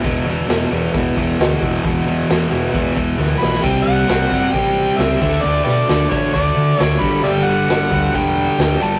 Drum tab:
CC |----------------|----------------|x-------------x-|----------------|
HH |o---o---o---o---|o---o---o-------|--o-o-o-o-o-o---|--o-o-o-o-o-o-o-|
SD |----o-------o---|----o-------o-oo|----o-------o---|----o-------o---|
BD |o-------o-o---o-|o-------o-o-----|o-----o-o-----o-|------o-o-----o-|

CC |x---------------|
HH |--o-o-o-o-o-o-o-|
SD |----o-------o---|
BD |------o-o-------|